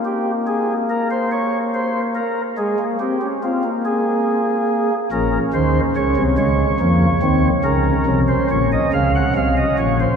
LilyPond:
<<
  \new Staff \with { instrumentName = "Pipe organ" } { \time 12/8 \key bes \minor \tempo 4. = 47 g'8 aes'8 bes'16 c''16 des''8 c''8 bes'8 aes'8 g'8 f'8 aes'4. | bes'8 c''8 des''8 des''4. bes'8. c''16 des''16 ees''16 f''16 ges''16 f''16 ees''16 des''16 c''16 | }
  \new Staff \with { instrumentName = "Pipe organ" } { \clef bass \time 12/8 \key bes \minor << { bes2. aes16 bes16 c'16 des'16 c'16 bes4.~ bes16 | des'4. aes8 bes8 c'8 des'2. | } \\ { r1. | <bes,, bes,>8 <ees, ees>8 <des, des>16 <c, c>16 <des, des>8 <f, f>8 <ees, ees>8 <des, des>8 <c, c>8 <bes,, bes,>8 <des, des>8 <c, c>8 <bes,, bes,>8 | } >> }
>>